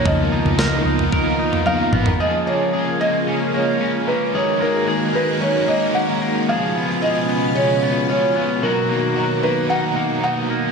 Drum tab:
SD |----o-----------|----------------|----------------|----------------|
T1 |------------o---|----------------|----------------|----------------|
T2 |--------------o-|----------------|----------------|----------------|
FT |o--o---o---o---o|----------------|----------------|----------------|
BD |o-------o-------|----------------|----------------|----------------|

SD |----------------|
T1 |----------------|
T2 |----------------|
FT |----------------|
BD |----------------|